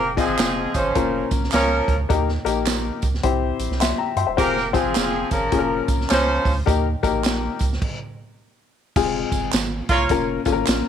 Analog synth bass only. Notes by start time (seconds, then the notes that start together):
Already playing: F1
0.28 G#1
0.38 F1
0.75 G#1
0.96 F1
1.31 C2
1.53 C#2
1.88 D2
2.10 D#2
2.45 A#1
3.03 C#2
3.24 C2
3.59 A#1
3.70 C2
4.16 G2
4.28 E1
4.38 F1
4.85 G#1
4.96 F1
5.31 G#1
5.52 F1
5.88 C2
6.11 C#2
6.45 D2
6.67 D#2
7.03 A#1
7.61 C#2
8.96 F1
9.32 G1
9.53 G#1
9.89 C2
10.10 F1
10.46 G#1
10.68 A#1